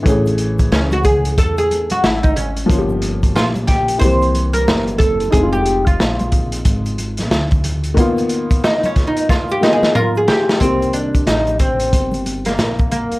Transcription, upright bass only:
X:1
M:4/4
L:1/16
Q:"Swing 16ths" 1/4=91
K:Fmix
V:1 name="Upright bass" clef=bass
A,,,4 ^C,,4 =E,,4 ^G,,,4 | G,,,4 B,,,4 C,,4 ^F,,,4 | F,,,4 B,,,4 _A,,,4 D,,4 | z16 |
C,,4 A,,,4 G,,,4 B,,,3 z |]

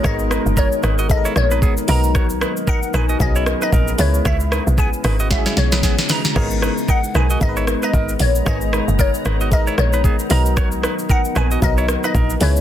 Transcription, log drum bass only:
X:1
M:4/4
L:1/16
Q:"Swing 16ths" 1/4=114
K:B
V:1 name="Log drum bass" clef=bass
G,,,3 F,,,2 z G,,,4 A,,,3 z B,,,2- | B,,,3 z3 A,,,2 B,,,3 z A,,,2 C,,2 | C,,3 B,,,2 z G,,,4 B,,,3 z3 | G,,,3 z3 B,,,2 G,,,3 z G,,,2 A,,,2 |
G,,,3 F,,,2 z G,,,4 A,,,3 z B,,,2- | B,,,3 z3 A,,,2 B,,,3 z A,,,2 C,,2 |]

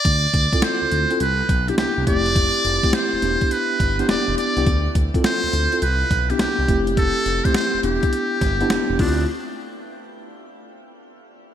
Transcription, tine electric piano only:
X:1
M:4/4
L:1/16
Q:"Swing 16ths" 1/4=104
K:Ddor
V:1 name="Tine electric piano"
z3 [CEFA]3 z [CEFA] z3 [B,DEG]3 [A,CEG]2- | [A,CEG]2 z [A,CEG]3 [B,DEG]4 z [B,DEG]3 z [B,DEG] | z3 [CEFA]3 z [CEFA] z3 [B,DEG]3 [A,CEG]2- | [A,CEG]2 z [A,CEG]3 [B,DEG]4 z [B,DEG]3 [A,CEF]2 |
z16 |]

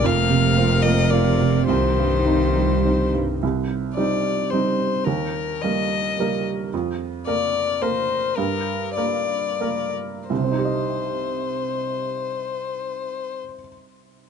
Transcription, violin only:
X:1
M:3/4
L:1/8
Q:1/4=104
K:Cm
V:1 name="Violin"
f3 e d2 | c4- c z | z2 d2 c2 | B2 e3 z |
z2 d2 c2 | B2 d3 z | c6- | c6 |]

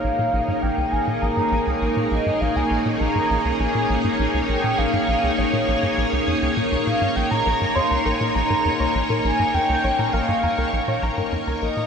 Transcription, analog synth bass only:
X:1
M:4/4
L:1/16
Q:1/4=101
K:Bbdor
V:1 name="Analog synth bass" clef=bass
B,,, B,, B,,, A,, B,,, D,, B,,, B,, B,,, A,, B,,, D,, B,,, B,, B,,, A,, | B,,, D,, B,,, B,, B,,, A,, B,,, D,, B,,, B,, B,,, A,, B,,, D,, B,,, B,, | B,,, A,, B,,, D,, B,,, B,, B,,, A,, B,,, D,, F,, D,, B,, D,, B,, A,, | B,,, B,, B,,, A,, F,, D,, B,,, B,, B,,, A,, F,, D,, B,,, B,, B,,, A,, |
F,, D,, B,,, B,, B,,, A,, F,, D,, B,,, B,, B,,, A,, F,, D,, B,,, B,, |]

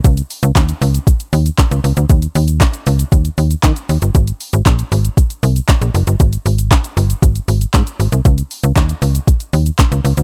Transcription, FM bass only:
X:1
M:4/4
L:1/16
Q:1/4=117
K:Dblyd
V:1 name="FM bass" clef=bass
D,,2 z D,, E,,2 D,,2 z2 E,,2 z D,, D,, =D,, | E,,2 E,,3 z D,,2 E,,2 E,,2 E, z E,, G,,, | A,,,2 z A,,, B,,,2 A,,,2 z2 C,,2 z B,,, _G,,, =G,,, | A,,,2 A,,,3 z G,,,2 A,,,2 A,,,2 A,, z A,,, C,, |
D,,2 z D,, E,,2 D,,2 z2 E,,2 z D,, D,, =D,, |]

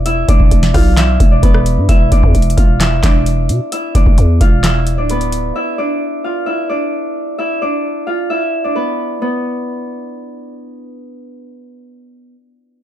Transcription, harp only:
X:1
M:4/4
L:1/16
Q:1/4=131
K:C
V:1 name="Harp"
[Ee]2 [Dd]4 [Ff]2 [Ee]3 [Dd] [B,B]4 | [Ee]2 [Dd]4 [Ff]2 [Ee]2 [Dd]6 | [Ee]2 [Dd]4 [Ff]2 [Ee]3 [Dd] [B,B]4 | [Ee]2 [Dd]4 [Ff]2 [Ee]2 [Dd]6 |
[Ee]2 [Dd]4 [Ff]2 [Ee]3 [Dd] [B,B]4 | B,12 z4 | z16 |]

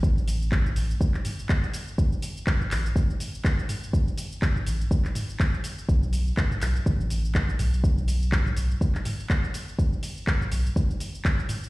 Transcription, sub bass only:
X:1
M:4/4
L:1/8
Q:"Swing 16ths" 1/4=123
K:Bphr
V:1 name="Sub bass" clef=bass
A,,,3 A,,, z4 | z3 A,,, z4 | z3 A,,, z4 | B,,,2 z B,,, A,,,3 B,,,- |
B,,,3 B,,, z4 | z3 B,,, z4 |]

